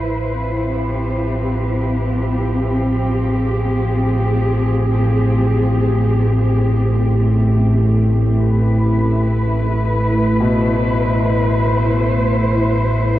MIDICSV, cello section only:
0, 0, Header, 1, 2, 480
1, 0, Start_track
1, 0, Tempo, 500000
1, 12662, End_track
2, 0, Start_track
2, 0, Title_t, "Cello section"
2, 0, Program_c, 0, 48
2, 0, Note_on_c, 0, 53, 61
2, 0, Note_on_c, 0, 64, 69
2, 0, Note_on_c, 0, 71, 63
2, 0, Note_on_c, 0, 72, 60
2, 315, Note_on_c, 0, 60, 73
2, 654, Note_on_c, 0, 67, 64
2, 1759, Note_off_c, 0, 72, 0
2, 2612, Note_off_c, 0, 71, 0
2, 2633, Note_off_c, 0, 64, 0
2, 2997, Note_on_c, 0, 68, 63
2, 6895, Note_off_c, 0, 53, 0
2, 6906, Note_off_c, 0, 68, 0
2, 6914, Note_on_c, 0, 57, 55
2, 8015, Note_on_c, 0, 71, 74
2, 8180, Note_on_c, 0, 64, 66
2, 8897, Note_off_c, 0, 67, 0
2, 9235, Note_off_c, 0, 60, 0
2, 10084, Note_on_c, 0, 72, 76
2, 12662, Note_off_c, 0, 57, 0
2, 12662, Note_off_c, 0, 64, 0
2, 12662, Note_off_c, 0, 71, 0
2, 12662, Note_off_c, 0, 72, 0
2, 12662, End_track
0, 0, End_of_file